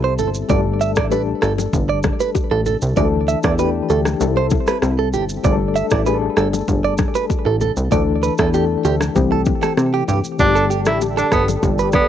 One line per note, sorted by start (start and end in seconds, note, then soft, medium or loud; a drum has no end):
0.00 0.20 C2 medium
0.00 0.26 G3 medium
0.00 0.27 C4 medium
0.00 0.27 E4 medium
0.00 0.28 A4 loud
0.00 0.13 C5 medium
0.19 0.44 G1 medium
0.19 0.29 A4 medium
0.19 low conga medium
0.19 shaker soft
0.34 shaker medium
0.48 0.98 G1 loud
0.48 1.00 G3 medium
0.48 1.00 A3 medium
0.48 1.01 D4 medium
0.48 1.01 A4 medium
0.48 0.60 D5 medium
0.48 kick loud
0.48 low conga medium
0.48 shaker medium
0.81 0.91 E5 medium
0.81 shaker medium
0.96 1.34 A1 medium
0.96 1.06 D5 medium
0.96 kick medium
0.96 cross-stick loud
0.96 low bongo medium
0.96 shaker medium
1.10 2.12 G3 medium
1.10 2.12 A3 medium
1.10 2.13 D4 medium
1.10 2.13 A4 medium
1.10 1.22 B4 medium
1.10 high bongo medium
1.10 shaker medium
1.42 1.68 G1 loud
1.42 1.52 A4 medium
1.42 cross-stick loud
1.42 high bongo medium
1.42 shaker medium
1.58 low bongo medium
1.58 shaker medium
1.73 2.12 G1 loud
1.73 kick medium
1.73 low conga medium
1.73 shaker medium
1.89 1.99 D5 medium
2.03 kick loud
2.03 cross-stick medium
2.03 low bongo medium
2.03 shaker medium
2.20 2.30 B4 medium
2.20 high bongo medium
2.20 shaker medium
2.35 kick medium
2.35 high bongo medium
2.35 shaker medium
2.51 2.77 A1 medium
2.51 2.61 A4 medium
2.66 2.76 A4 medium
2.66 low conga medium
2.66 shaker medium
2.82 2.94 C2 medium
2.82 shaker medium
2.96 3.36 D2 loud
2.96 3.47 E3 medium
2.96 3.48 A3 medium
2.96 3.48 D4 medium
2.96 3.04 G#4 medium
2.96 3.07 D5 medium
2.96 kick loud
2.96 low conga medium
2.96 shaker medium
3.05 3.52 A4 medium
3.28 3.38 E5 medium
3.28 shaker medium
3.43 3.82 E2 medium
3.43 3.54 D5 medium
3.43 kick medium
3.43 cross-stick loud
3.43 low bongo medium
3.43 shaker medium
3.57 4.20 E3 medium
3.57 4.20 A3 medium
3.57 4.21 D4 medium
3.57 4.21 G4 medium
3.57 3.69 B4 medium
3.57 high bongo medium
3.57 shaker medium
3.90 4.15 D2 medium
3.90 4.00 A4 medium
3.90 high bongo medium
3.90 shaker medium
4.05 cross-stick medium
4.05 low bongo medium
4.05 shaker medium
4.20 4.59 C2 loud
4.20 5.21 G3 medium
4.20 5.22 C4 medium
4.20 5.22 E4 medium
4.20 5.23 A4 medium
4.20 low conga medium
4.20 shaker medium
4.37 4.46 C5 medium
4.50 kick loud
4.50 low bongo medium
4.50 shaker medium
4.67 4.77 B4 medium
4.67 cross-stick medium
4.67 high bongo medium
4.67 shaker medium
4.82 5.15 C2 loud
4.82 cross-stick medium
4.82 high bongo medium
4.82 shaker medium
4.99 5.08 A4 medium
5.13 5.39 G1 medium
5.13 5.24 G4 medium
5.13 low conga medium
5.13 shaker medium
5.29 shaker medium
5.43 5.83 G1 loud
5.43 5.95 G3 medium
5.43 5.95 A3 medium
5.43 5.96 D4 medium
5.43 5.52 G#4 medium
5.43 5.55 D5 medium
5.43 kick loud
5.43 low conga medium
5.43 shaker medium
5.52 5.99 A4 loud
5.76 5.86 E5 medium
5.76 shaker medium
5.91 6.29 A1 medium
5.91 6.01 D5 medium
5.91 kick medium
5.91 cross-stick loud
5.91 low bongo medium
5.91 shaker medium
6.05 7.07 G3 medium
6.05 7.07 A3 medium
6.05 7.08 D4 medium
6.05 6.14 G#4 medium
6.05 6.16 B4 medium
6.05 high bongo medium
6.05 shaker medium
6.14 7.11 A4 loud
6.37 6.63 G1 loud
6.37 6.47 A4 medium
6.37 cross-stick loud
6.37 high bongo medium
6.37 shaker medium
6.53 low bongo medium
6.53 shaker medium
6.68 7.07 G1 loud
6.68 kick medium
6.68 low conga medium
6.68 shaker medium
6.84 6.94 D5 medium
6.98 kick loud
6.98 cross-stick medium
6.98 low bongo medium
6.98 shaker medium
7.15 7.25 B4 medium
7.15 high bongo medium
7.15 shaker medium
7.30 kick medium
7.30 high bongo medium
7.30 shaker medium
7.46 7.72 A1 medium
7.46 7.55 A4 medium
7.61 7.71 A4 medium
7.61 low conga medium
7.61 shaker medium
7.77 7.89 C2 medium
7.77 shaker medium
7.90 8.31 D2 loud
7.90 8.42 E3 medium
7.90 8.43 A3 medium
7.90 8.43 D4 medium
7.90 8.43 A4 medium
7.90 8.02 D5 medium
7.90 kick loud
7.90 low conga medium
7.90 shaker medium
8.23 8.33 B4 medium
8.23 shaker medium
8.38 8.77 E2 loud
8.38 8.48 A4 medium
8.38 kick medium
8.38 cross-stick loud
8.38 low bongo medium
8.38 shaker medium
8.52 9.15 E3 medium
8.52 9.14 A3 medium
8.52 9.16 D4 medium
8.52 8.64 G4 medium
8.52 9.16 A4 medium
8.52 high bongo medium
8.52 shaker medium
8.85 9.10 D2 loud
8.85 8.95 G4 medium
8.85 high bongo medium
8.85 shaker medium
9.01 cross-stick loud
9.01 low bongo medium
9.01 shaker medium
9.14 9.54 C2 loud
9.14 9.22 D#3 medium
9.14 10.17 A3 medium
9.14 10.17 C4 medium
9.14 10.17 G4 medium
9.14 kick medium
9.14 low conga medium
9.14 shaker medium
9.21 10.19 E3 medium
9.32 9.41 A4 medium
9.45 kick medium
9.45 low bongo medium
9.45 shaker medium
9.62 9.72 A4 medium
9.62 cross-stick medium
9.62 high bongo medium
9.62 shaker medium
9.77 10.03 C3 medium
9.77 cross-stick medium
9.77 high bongo medium
9.77 shaker medium
9.94 10.03 G4 medium
10.08 10.22 G2 loud
10.08 10.18 G4 medium
10.08 low conga medium
10.08 shaker medium
10.24 shaker medium
10.38 10.88 G1 loud
10.38 11.40 D3 medium
10.38 11.40 G3 medium
10.38 11.41 A3 medium
10.38 10.66 D4 loud
10.38 12.08 G4 medium
10.38 11.41 G4 medium
10.38 12.08 A4 medium
10.38 12.08 D5 medium
10.38 12.08 A5 medium
10.38 kick loud
10.38 low conga medium
10.38 shaker medium
10.55 10.65 A4 medium
10.55 shaker soft
10.70 10.80 G4 medium
10.70 shaker medium
10.85 11.24 A1 medium
10.85 10.99 E4 medium
10.85 cross-stick loud
10.85 low bongo medium
10.85 shaker medium
11.01 high bongo medium
11.01 shaker medium
11.17 11.30 D4 medium
11.17 11.27 A4 medium
11.17 shaker soft
11.32 11.57 G1 medium
11.32 11.46 B3 medium
11.32 11.42 A4 medium
11.32 kick medium
11.32 cross-stick loud
11.32 high bongo medium
11.32 low bongo medium
11.32 shaker medium
11.48 low bongo medium
11.48 shaker medium
11.63 12.02 G1 loud
11.63 kick medium
11.63 low conga medium
11.63 shaker medium
11.79 11.88 B4 medium
11.79 shaker soft
11.93 12.08 B3 medium
11.93 12.04 D5 medium
11.93 kick loud
11.93 cross-stick medium
11.93 low bongo medium
11.93 shaker medium